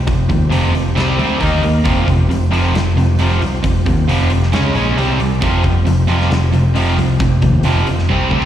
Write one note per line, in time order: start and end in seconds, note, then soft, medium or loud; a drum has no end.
0.00 0.94 F3 medium
0.00 1.38 C4 medium
0.00 1.39 G4 medium
0.07 0.27 F1 medium
0.07 0.27 F2 medium
0.07 0.27 C3 medium
0.07 kick loud
0.07 open hi-hat medium
0.29 0.50 D#2 medium
0.29 0.48 F2 medium
0.29 0.50 C3 medium
0.29 kick medium
0.29 open hi-hat soft
0.49 0.72 F1 medium
0.49 0.71 F2 medium
0.49 0.72 C3 medium
0.49 0.73 F3 medium
0.49 open hi-hat medium
0.73 0.95 F1 medium
0.73 0.94 F2 medium
0.73 0.94 C3 medium
0.73 open hi-hat soft
0.96 1.16 C2 medium
0.96 1.17 C3 medium
0.96 1.18 G3 medium
0.96 1.18 C4 medium
0.96 1.41 D5 medium
0.96 snare loud
0.96 open hi-hat medium
1.18 1.41 D2 medium
1.18 1.40 C3 medium
1.18 1.40 G3 medium
1.18 1.41 C4 loud
1.18 open hi-hat soft
1.40 1.61 D#2 medium
1.40 1.62 D#3 medium
1.40 1.62 A#3 medium
1.40 1.63 D#4 medium
1.40 1.87 D#4 medium
1.40 1.86 A#4 medium
1.40 1.86 F5 medium
1.40 kick medium
1.40 open hi-hat medium
1.63 1.83 D#2 medium
1.63 1.83 D#3 medium
1.63 1.84 A#3 medium
1.63 open hi-hat soft
1.84 2.06 F1 medium
1.84 2.06 F2 medium
1.84 2.06 C3 medium
1.84 2.07 F3 medium
1.84 4.52 F3 medium
1.84 4.51 C4 medium
1.84 4.51 G4 medium
1.84 kick loud
1.84 open hi-hat medium
2.07 2.28 F1 medium
2.07 2.28 F2 medium
2.07 2.28 C3 medium
2.07 kick medium
2.07 open hi-hat soft
2.29 2.50 F1 medium
2.29 2.50 F2 medium
2.29 2.50 C3 medium
2.29 open hi-hat medium
2.51 2.72 F1 medium
2.51 2.73 F2 medium
2.51 2.73 C3 medium
2.51 2.74 F3 medium
2.51 open hi-hat medium
2.74 2.95 F1 medium
2.74 2.95 F2 medium
2.74 2.95 C3 medium
2.74 snare loud
2.74 open hi-hat medium
2.96 3.17 F1 medium
2.96 3.18 F2 medium
2.96 3.17 C3 medium
2.96 open hi-hat soft
3.19 3.39 F1 medium
3.19 3.41 F2 medium
3.19 3.41 C3 loud
3.19 3.42 F3 loud
3.19 open hi-hat medium
3.41 3.62 C2 medium
3.41 3.62 F2 medium
3.41 3.62 C3 medium
3.41 open hi-hat soft
3.64 3.84 F1 medium
3.64 3.84 F2 medium
3.64 3.85 C3 medium
3.64 kick loud
3.64 open hi-hat medium
3.86 4.07 D#2 medium
3.86 4.07 F2 medium
3.86 4.07 C3 medium
3.86 kick medium
3.86 open hi-hat medium
4.08 4.28 F1 medium
4.08 4.30 F2 medium
4.08 4.30 C3 loud
4.08 4.30 F3 medium
4.08 open hi-hat medium
4.30 4.51 F1 medium
4.30 4.52 F2 medium
4.30 4.52 C3 medium
4.30 open hi-hat medium
4.42 snare soft
4.52 4.73 C#2 medium
4.52 4.74 C#3 medium
4.52 4.75 G#3 medium
4.52 4.75 C#4 loud
4.52 4.99 C#4 medium
4.52 4.98 G#4 medium
4.52 4.99 D#5 medium
4.52 snare loud
4.52 open hi-hat medium
4.74 4.95 A#1 medium
4.74 4.96 C#3 loud
4.74 4.97 G#3 loud
4.74 4.97 C#4 loud
4.74 open hi-hat soft
4.97 5.18 C2 medium
4.97 5.19 C3 medium
4.97 5.19 G3 medium
4.97 5.19 C4 loud
4.97 8.45 C4 medium
4.97 8.06 G4 medium
4.97 5.43 D5 medium
4.97 open hi-hat medium
5.20 5.43 C2 medium
5.20 5.40 C3 medium
5.20 5.41 G3 medium
5.20 open hi-hat soft
5.42 5.62 F1 medium
5.42 5.64 F2 medium
5.42 5.64 C3 medium
5.42 8.07 F3 medium
5.42 5.64 F3 loud
5.42 kick loud
5.42 open hi-hat medium
5.64 5.84 F1 medium
5.64 5.85 F2 medium
5.64 5.85 C3 medium
5.64 kick medium
5.64 open hi-hat soft
5.86 6.07 F1 medium
5.86 6.07 F2 medium
5.86 6.07 C3 medium
5.86 open hi-hat medium
6.08 6.29 F1 medium
6.08 6.30 F2 medium
6.08 6.30 C3 medium
6.08 6.31 F3 medium
6.08 open hi-hat medium
6.20 snare soft
6.31 6.51 F1 medium
6.31 6.52 F2 medium
6.31 6.52 C3 medium
6.31 snare loud
6.31 open hi-hat medium
6.53 6.74 F1 medium
6.53 6.73 F2 medium
6.53 6.74 C3 medium
6.53 open hi-hat soft
6.74 6.96 F1 medium
6.74 6.96 F2 medium
6.74 6.97 C3 medium
6.74 6.97 F3 loud
6.74 open hi-hat medium
6.98 7.18 C2 medium
6.98 7.18 F2 medium
6.98 7.19 C3 medium
6.98 open hi-hat soft
7.19 7.40 F1 medium
7.19 7.40 F2 medium
7.19 7.40 C3 medium
7.19 kick loud
7.19 open hi-hat medium
7.42 7.62 D#2 medium
7.42 7.62 F2 medium
7.42 7.63 C3 medium
7.42 kick medium
7.42 open hi-hat medium
7.63 7.85 F1 medium
7.63 7.86 F2 medium
7.63 7.85 C3 loud
7.63 7.87 F3 medium
7.63 open hi-hat medium
7.86 8.06 F1 medium
7.86 8.07 F2 medium
7.86 8.07 C3 medium
7.86 open hi-hat soft
7.98 snare soft
8.09 8.29 C2 medium
8.09 8.31 C3 medium
8.09 8.31 G3 medium
8.09 8.31 C4 loud
8.09 8.45 G4 medium
8.09 8.45 D5 medium
8.09 kick medium
8.31 8.45 D2 medium
8.31 8.45 C3 loud
8.31 8.45 G3 loud
8.31 kick medium
8.35 8.45 C4 loud
8.42 kick medium